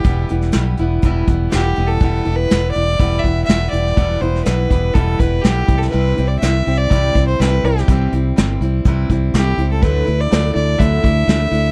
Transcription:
<<
  \new Staff \with { instrumentName = "Fiddle" } { \time 4/4 \key e \minor \tempo 4 = 123 g'8 r2 r8 g'8. a'16~ | a'8. b'8. d''4 e''8 e''8 d''8~ | d''8 c''8 b'4 a'8 b'8 g'8. a'16 | b'8. d''16 e''8. d''4 c''16 b'8 g'8~ |
g'8 r2 r8 g'8. a'16 | b'8. d''8. d''8 e''2 | }
  \new Staff \with { instrumentName = "Steel-string acoustic guitar" } { \time 4/4 \key e \minor <e, b, e g b e'>8 <e g b e'>8 <e g b e'>8 <e g b e'>8 <e, b, e g b e'>8 <e g b e'>8 <e g b e'>8 <e g b e'>8 | <e, b, e g b e'>8 <e g b e'>8 <e g b e'>8 <e g b e'>8 <e, b, e g b e'>8 <e g b e'>8 <e g b e'>8 <e g b e'>8 | <e, b, e g b e'>8 <e g b e'>8 <e g b e'>8 <e g b e'>8 <e, b, e g b e'>8 <e g b e'>8 <e g b e'>8 <g c' e'>8 | <c e g c' e'>8 <g c' e'>8 <e g c' e'>8 <g c' e'>8 <c e g c' e'>8 <g c' e'>8 <e g c' e'>8 <g c' e'>8 |
<c e g c' e'>8 <g c' e'>8 <e g c' e'>8 <g c' e'>8 <c e g c' e'>8 <g c' e'>8 <e g c' e'>8 <g c' e'>8 | <d fis a d' e'>8 <a d' e'>8 <fis a d' e'>8 <a d' e'>8 <d fis a d' e'>8 <a d' e'>8 <fis a d' e'>8 <a d' e'>8 | }
  \new Staff \with { instrumentName = "Fingered electric bass" } { \clef bass \time 4/4 \key e \minor e,,8 e,,8 b,,8 e,,8 e,,8 e,,8 e,,8 e,,8 | e,,8 e,,8 e,,8 e,,8 e,,8 e,,8 e,,8 e,,8 | e,,8 e,,8 b,,8 e,,8 e,,8 e,,8 b,,8 c,8 | c,8 c,8 c,8 c,8 c,8 c,8 c,8 c,8 |
c,8 c,8 g,,8 c,8 c,8 c,8 c,8 cis,8 | d,8 d,8 d,8 d,8 d,8 d,8 d,8 d,8 | }
  \new DrumStaff \with { instrumentName = "Drums" } \drummode { \time 4/4 <hh bd>8 hh16 sn16 <hh sn>8 hh8 <hh bd>8 <hh bd>8 <hh sn>8 hh8 | <hh bd>8 hh8 <hh sn>8 hh8 <hh bd>8 <hh bd>8 <hh sn>8 hh16 sn16 | <hh bd>8 hh16 sn16 <hh sn>8 <hh bd>8 <hh bd>8 <hh bd>8 <hh sn>8 <hh bd>16 sn16 | hh8 hh8 <hh sn>8 hh8 <hh bd>8 <hh bd>8 <hh sn>8 hh16 sn16 |
<hh bd>8 hh8 <hh sn>8 hh8 <hh bd>8 <hh bd>8 <hh sn>8 hh8 | <hh bd>8 hh8 <hh sn>8 hh8 <hh bd>8 <hh bd>8 <hh sn>8 hh8 | }
>>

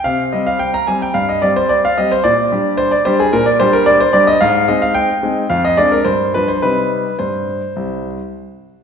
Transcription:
<<
  \new Staff \with { instrumentName = "Grand piano" } { \time 4/4 \key c \minor \tempo 4 = 110 f''8 ees''16 f''16 g''16 bes''16 aes''16 g''16 f''16 ees''16 d''16 c''16 d''16 f''16 ees''16 c''16 | d''4 c''16 d''16 c''16 aes'16 bes'16 d''16 c''16 bes'16 d''16 c''16 d''16 ees''16 | f''8 ees''16 f''16 g''4 f''16 ees''16 d''16 bes'16 c''8 b'16 c''16 | b'4 c''2~ c''8 r8 | }
  \new Staff \with { instrumentName = "Grand piano" } { \time 4/4 \key c \minor c8 <g c' g'>4 <g c' g'>8 g,8 <g c' g'>4 <g c' g'>8 | bes,8 <g d' g'>4 <g d' g'>8 bes,8 <g d' g'>4 <g d' g'>8 | aes,8 <aes c' ees'>4 <aes c' ees'>8 f,8 <aes c' d'>8 g,8 <f g d'>8 | <c g ees'>4 g,4 c,4 r4 | }
>>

